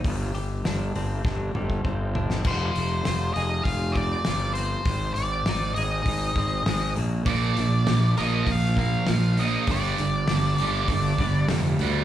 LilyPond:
<<
  \new Staff \with { instrumentName = "Lead electric guitar" } { \time 4/4 \key f \dorian \tempo 4 = 100 r1 | c''4. ees''8 f''8 d''4 c''8~ | c''8 d''4 ees''2 r8 | d''4. ees''8 f''8 f''4 ees''8 |
d''2. r4 | }
  \new Staff \with { instrumentName = "Clean electric guitar" } { \time 4/4 \key f \dorian g,8 g'8 d'8 c'8 d'8 g8 c'8 d'8 | f4 f'8 aes'8 f'8 c'8 f8 c'8 | aes,4 ees'8 aes'8 ees'8 c'8 aes8 bes,8 | bes,4. bes'4 bes8 f8 bes8 |
g,4 d'8 g'8 d'8 b8 g8 b8 | }
  \new Staff \with { instrumentName = "Distorted electric guitar" } { \clef bass \time 4/4 \key f \dorian r1 | r1 | r1 | <bes, f bes>8 <bes, f>8 <bes, f>8 <bes, f bes>8 <bes, f>8 <bes, f>8 <bes, f>8 <bes, f bes>8 |
<g, d g>8 <g, d>8 <g, d>8 <g, d g>8 <g, d>8 <g, d>8 <g, d>8 <g, d g>8 | }
  \new Staff \with { instrumentName = "Fingered electric bass" } { \clef bass \time 4/4 \key f \dorian g,,8 g,,8 g,,8 g,,8 g,,8 g,,8 g,,4 | f,,8 f,,8 f,,8 f,,8 f,,4 g,,4 | aes,,8 aes,,8 aes,,8 aes,,8 aes,,8 aes,,8 aes,,8 bes,,8 | bes,,8 bes,,8 bes,,8 bes,,8 bes,,4 bes,,4 |
g,,8 g,,8 g,,8 g,,8 g,,8 g,,8 f,,8 d,8 | }
  \new DrumStaff \with { instrumentName = "Drums" } \drummode { \time 4/4 <hho bd>8 hho8 <hho sn>8 hho8 <bd sn>8 toml16 bd16 bd8 tomfh16 sn16 | <cymc bd>8 hho8 <hho sn>8 hho8 <hho bd>8 <hho bd>8 <hho sn>8 hho8 | <hho bd>8 hho8 <hho sn>8 hho8 <hho bd>8 <hho bd>8 <hho sn>8 hho8 | <hho bd>8 hho8 <hho sn>8 hho8 <hho bd>8 <hho bd>8 <hho sn>8 hho8 |
<hho bd>8 hho8 <hho sn>8 hho8 <hho bd>8 <hho bd>8 <hho sn>8 hho8 | }
>>